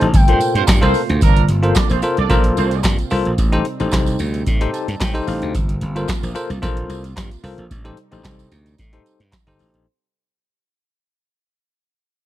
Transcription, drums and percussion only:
0.01 closed hi-hat soft
0.14 kick loud
0.14 closed hi-hat medium
0.14 tambourine medium
0.28 closed hi-hat medium
0.40 closed hi-hat medium
0.40 tambourine medium
0.55 closed hi-hat medium
0.67 kick loud
0.67 snare loud
0.67 clap medium
0.67 closed hi-hat loud
0.67 tambourine loud
0.83 closed hi-hat medium
0.83 tambourine soft
0.94 open hi-hat medium
0.94 tambourine medium
1.09 closed hi-hat soft
1.21 kick loud
1.21 closed hi-hat medium
1.21 tambourine medium
1.37 closed hi-hat medium
1.49 closed hi-hat medium
1.63 closed hi-hat medium
1.75 kick loud
1.75 snare loud
1.75 clap medium
1.75 closed hi-hat medium
1.75 tambourine medium
1.89 closed hi-hat medium
1.89 tambourine medium
2.02 closed hi-hat medium
2.02 tambourine medium
2.17 closed hi-hat soft
2.30 kick loud
2.30 closed hi-hat medium
2.30 tambourine medium
2.44 closed hi-hat medium
2.57 closed hi-hat medium
2.57 tambourine medium
2.71 closed hi-hat medium
2.71 tambourine soft
2.83 kick loud
2.83 snare loud
2.83 clap medium
2.83 closed hi-hat medium
2.83 tambourine loud
2.99 closed hi-hat medium
2.99 tambourine soft
3.10 open hi-hat medium
3.10 tambourine medium
3.25 closed hi-hat soft
3.38 kick loud
3.38 closed hi-hat medium
3.38 tambourine medium
3.53 closed hi-hat soft
3.65 closed hi-hat medium
3.80 closed hi-hat medium
3.80 tambourine soft
3.91 kick loud
3.91 snare loud
3.91 clap medium
3.91 closed hi-hat loud
3.91 tambourine medium
4.06 closed hi-hat medium
4.06 tambourine medium
4.19 closed hi-hat medium
4.19 tambourine medium
4.34 closed hi-hat soft
4.34 tambourine soft
4.46 kick loud
4.46 closed hi-hat medium
4.46 tambourine medium
4.61 closed hi-hat medium
4.74 closed hi-hat medium
4.74 tambourine medium
4.88 closed hi-hat medium
4.88 tambourine soft
5.01 kick loud
5.01 snare loud
5.01 clap medium
5.01 closed hi-hat medium
5.01 tambourine medium
5.15 closed hi-hat soft
5.15 tambourine soft
5.28 open hi-hat medium
5.28 tambourine medium
5.42 closed hi-hat soft
5.55 kick loud
5.55 closed hi-hat medium
5.55 tambourine medium
5.69 closed hi-hat medium
5.81 closed hi-hat medium
5.96 closed hi-hat soft
5.96 tambourine soft
6.08 kick loud
6.08 snare loud
6.08 clap medium
6.08 closed hi-hat medium
6.08 tambourine medium
6.23 closed hi-hat medium
6.23 tambourine medium
6.36 closed hi-hat medium
6.36 tambourine medium
6.50 closed hi-hat soft
6.50 tambourine soft
6.63 kick loud
6.63 closed hi-hat medium
6.63 tambourine medium
6.77 closed hi-hat medium
6.90 closed hi-hat medium
6.90 tambourine medium
7.04 closed hi-hat medium
7.04 tambourine soft
7.17 kick loud
7.17 snare loud
7.17 clap medium
7.17 closed hi-hat loud
7.17 tambourine loud
7.31 closed hi-hat medium
7.31 tambourine soft
7.44 open hi-hat medium
7.44 tambourine medium
7.58 closed hi-hat soft
7.71 kick loud
7.71 closed hi-hat medium
7.71 tambourine medium
7.85 closed hi-hat soft
7.97 closed hi-hat medium
8.12 closed hi-hat soft
8.12 tambourine soft
8.24 kick loud
8.24 snare loud
8.24 clap medium
8.24 closed hi-hat loud
8.24 tambourine medium
8.39 closed hi-hat soft
8.39 tambourine medium
8.52 closed hi-hat medium
8.52 tambourine medium
8.66 closed hi-hat soft
8.66 tambourine soft
8.78 kick loud
8.78 closed hi-hat medium
8.78 tambourine medium
8.93 closed hi-hat medium
9.06 closed hi-hat medium
9.06 tambourine medium
9.20 closed hi-hat medium
9.32 kick loud
9.32 snare loud
9.32 clap medium
9.32 closed hi-hat loud
9.32 tambourine medium
9.47 closed hi-hat soft
9.47 tambourine soft
9.59 open hi-hat medium
9.59 tambourine medium
9.74 closed hi-hat soft

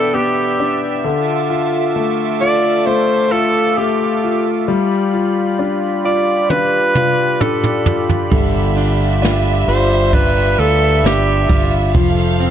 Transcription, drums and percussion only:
6.50 high tom medium
6.95 mid tom medium
7.41 mid tom medium
7.64 mid tom medium
7.86 floor tom loud
8.09 floor tom medium
8.32 kick loud
8.32 ride medium
8.77 ride medium
9.23 snare loud
9.23 ride medium
9.46 ride soft
9.68 ride medium
10.13 kick medium
10.13 ride medium
10.36 ride soft
10.60 ride medium
11.04 snare loud
11.04 ride medium
11.49 kick loud
11.49 ride medium
11.95 kick loud
11.95 ride medium
12.40 ride medium

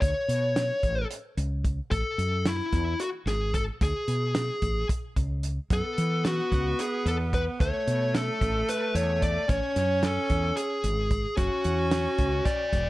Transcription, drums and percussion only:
0.02 kick loud
0.02 closed hi-hat medium
0.29 closed hi-hat medium
0.56 snare medium
0.56 closed hi-hat medium
0.83 kick medium
0.83 closed hi-hat medium
1.11 closed hi-hat medium
1.38 closed hi-hat medium
1.65 kick medium
1.65 closed hi-hat medium
1.91 kick loud
1.91 closed hi-hat medium
2.19 closed hi-hat medium
2.45 snare loud
2.45 closed hi-hat medium
2.73 kick medium
2.73 snare soft
2.73 closed hi-hat medium
3.00 closed hi-hat medium
3.27 snare soft
3.27 closed hi-hat medium
3.54 kick medium
3.54 closed hi-hat medium
3.81 kick loud
3.81 closed hi-hat medium
4.08 closed hi-hat medium
4.35 snare medium
4.35 closed hi-hat medium
4.62 kick medium
4.62 closed hi-hat medium
4.89 kick medium
4.89 closed hi-hat medium
5.16 kick medium
5.16 closed hi-hat medium
5.43 closed hi-hat medium
5.70 kick loud
5.70 closed hi-hat medium
5.98 closed hi-hat medium
6.25 snare medium
6.25 closed hi-hat medium
6.52 kick medium
6.52 closed hi-hat soft
6.79 closed hi-hat medium
7.06 closed hi-hat medium
7.33 kick medium
7.33 closed hi-hat medium
7.60 kick loud
7.60 closed hi-hat medium
7.88 closed hi-hat medium
8.15 snare medium
8.15 closed hi-hat medium
8.41 kick medium
8.41 snare soft
8.41 closed hi-hat medium
8.69 closed hi-hat medium
8.95 closed hi-hat medium
9.22 kick medium
9.22 closed hi-hat medium
9.49 kick loud
9.49 closed hi-hat medium
9.76 snare soft
9.76 closed hi-hat medium
10.03 snare medium
10.03 closed hi-hat medium
10.30 kick medium
10.30 closed hi-hat medium
10.57 closed hi-hat medium
10.84 closed hi-hat medium
11.11 kick medium
11.11 closed hi-hat medium
11.37 kick medium
11.37 closed hi-hat medium
11.64 closed hi-hat medium
11.91 snare medium
11.91 closed hi-hat medium
12.18 kick medium
12.18 closed hi-hat medium
12.46 kick loud
12.46 closed hi-hat medium
12.73 kick medium
12.73 closed hi-hat medium

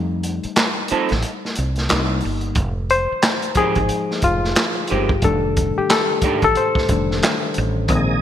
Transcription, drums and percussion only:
0.23 closed hi-hat medium
0.43 closed hi-hat soft
0.56 snare loud
0.56 clap medium
0.56 closed hi-hat medium
0.88 closed hi-hat medium
1.09 snare soft
1.09 closed hi-hat soft
1.22 closed hi-hat medium
1.45 snare soft
1.55 closed hi-hat medium
1.76 snare soft
1.76 closed hi-hat soft
1.89 snare loud
1.89 clap medium
1.89 closed hi-hat medium
2.20 open hi-hat soft
2.41 closed hi-hat soft
2.55 kick loud
2.55 closed hi-hat medium
2.90 closed hi-hat medium
3.22 snare loud
3.22 clap medium
3.22 closed hi-hat medium
3.42 closed hi-hat soft
3.55 kick medium
3.55 closed hi-hat medium
3.75 kick medium
3.75 closed hi-hat soft
3.89 closed hi-hat medium
4.11 snare soft
4.22 kick medium
4.22 closed hi-hat medium
4.44 snare soft
4.55 snare loud
4.55 clap medium
4.55 closed hi-hat medium
4.87 closed hi-hat medium
5.09 kick medium
5.22 kick medium
5.22 closed hi-hat medium
5.57 kick medium
5.57 closed hi-hat medium
5.90 snare loud
5.90 clap medium
5.90 closed hi-hat medium
6.22 kick medium
6.22 closed hi-hat medium
6.42 kick medium
6.42 closed hi-hat soft
6.55 closed hi-hat medium
6.75 kick medium
6.75 snare soft
6.89 kick medium
6.89 closed hi-hat medium
7.11 snare soft
7.23 snare loud
7.23 clap medium
7.23 closed hi-hat medium
7.54 closed hi-hat medium
7.88 kick loud
7.88 closed hi-hat medium

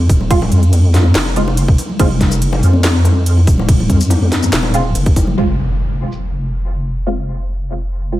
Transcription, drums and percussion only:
0.09 kick loud
0.09 open hi-hat medium
0.21 high bongo medium
0.21 low conga medium
0.31 kick loud
0.31 closed hi-hat medium
0.31 crash medium
0.42 high bongo medium
0.42 low conga medium
0.52 closed hi-hat medium
0.63 closed hi-hat soft
0.73 closed hi-hat medium
0.73 crash soft
0.73 high bongo medium
0.94 snare medium
0.94 open hi-hat medium
0.94 high bongo medium
1.04 high conga medium
1.15 snare loud
1.15 clap medium
1.15 closed hi-hat medium
1.15 crash medium
1.26 high bongo medium
1.36 closed hi-hat medium
1.48 high bongo medium
1.57 closed hi-hat medium
1.57 crash medium
1.68 kick loud
1.78 open hi-hat loud
1.78 high bongo medium
1.89 low conga medium
1.99 kick loud
1.99 closed hi-hat medium
1.99 crash medium
1.99 high bongo medium
2.11 low conga medium
2.21 kick medium
2.21 snare medium
2.21 closed hi-hat medium
2.31 closed hi-hat soft
2.31 high bongo medium
2.31 shaker medium
2.42 closed hi-hat medium
2.42 crash soft
2.53 high bongo medium
2.63 open hi-hat medium
2.73 high conga medium
2.84 snare loud
2.84 clap medium
2.84 closed hi-hat medium
2.84 crash medium
2.84 high bongo medium
3.05 closed hi-hat medium
3.05 high bongo medium
3.26 closed hi-hat medium
3.26 crash soft
3.37 high bongo medium
3.47 kick loud
3.47 open hi-hat loud
3.58 high bongo medium
3.58 low conga medium
3.69 kick loud
3.69 closed hi-hat medium
3.69 crash medium
3.80 low conga medium
3.89 kick medium
3.89 closed hi-hat medium
3.89 high bongo medium
4.01 closed hi-hat soft
4.01 shaker medium
4.10 closed hi-hat medium
4.10 crash soft
4.10 high bongo medium
4.22 high conga medium
4.32 snare medium
4.32 open hi-hat medium
4.43 high bongo medium
4.43 high conga medium
4.43 shaker medium
4.53 snare loud
4.53 clap medium
4.53 closed hi-hat medium
4.53 crash medium
4.63 high bongo medium
4.74 closed hi-hat medium
4.95 closed hi-hat medium
4.95 crash soft
4.95 high bongo medium
5.06 kick loud
5.06 closed hi-hat soft
5.16 kick medium
5.16 open hi-hat loud
5.16 high bongo medium
5.27 low conga medium
6.12 shaker medium

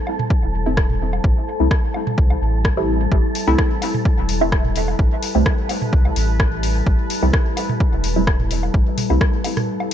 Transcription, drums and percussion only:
0.07 low woodblock medium
0.19 mid tom medium
0.30 kick loud
0.77 kick loud
0.77 cross-stick medium
0.90 mid tom medium
1.13 low woodblock medium
1.24 kick loud
1.71 kick loud
1.71 cross-stick medium
1.94 low woodblock medium
2.07 mid tom medium
2.18 kick loud
2.30 low woodblock medium
2.65 kick loud
2.65 cross-stick medium
3.12 kick loud
3.35 open hi-hat medium
3.58 kick loud
3.58 cross-stick medium
3.82 open hi-hat medium
3.82 low woodblock medium
3.94 mid tom medium
4.05 kick loud
4.29 open hi-hat medium
4.52 kick loud
4.52 cross-stick medium
4.65 mid tom medium
4.76 open hi-hat medium
4.88 low woodblock medium
4.99 kick loud
5.22 open hi-hat medium
5.46 kick loud
5.46 cross-stick medium
5.69 open hi-hat medium
5.69 low woodblock medium
5.82 mid tom medium
5.93 kick loud
6.05 low woodblock medium
6.16 open hi-hat medium
6.40 kick loud
6.40 cross-stick medium
6.63 open hi-hat medium
6.87 kick loud
7.10 open hi-hat medium
7.33 kick loud
7.33 cross-stick medium
7.57 open hi-hat medium
7.57 low woodblock medium
7.69 mid tom medium
7.80 kick loud
8.04 open hi-hat medium
8.27 kick loud
8.27 cross-stick medium
8.40 mid tom medium
8.51 open hi-hat medium
8.63 low woodblock medium
8.74 kick loud
8.98 mid tom medium
8.98 open hi-hat medium
9.10 low woodblock soft
9.21 kick loud
9.21 cross-stick medium
9.44 open hi-hat medium
9.44 low woodblock medium
9.57 cross-stick soft
9.57 mid tom medium
9.57 open hi-hat soft
9.80 low woodblock medium

